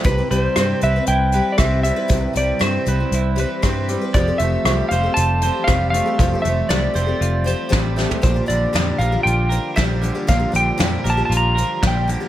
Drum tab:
HH |x-x-x-x-x-x-x-x-|x-x-x-x-x-x-x-x-|x-x-x-x-x-x-x-x-|x-x-x-x-x-x-x---|
SD |----r-------r---|----r-------r---|----r-------r---|----o-------o-o-|
FT |----------------|----------------|----------------|---------------o|
BD |o-----------o---|o-----------o---|o-----------o---|o-----------o---|

HH |x-x-x-x-x-x-x-x-|x-x-x-x-x-x-x-x-|
SD |----o-------o---|----o-------o---|
FT |----------------|----------------|
BD |o-----------o---|o-----------o---|